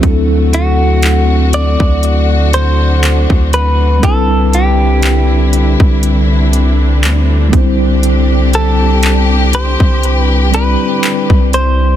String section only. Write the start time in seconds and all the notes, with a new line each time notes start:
Already playing: A3
0.03 D3 C4 F#4
2.04 D4
4.03 C4 D4 E4
7.54 G4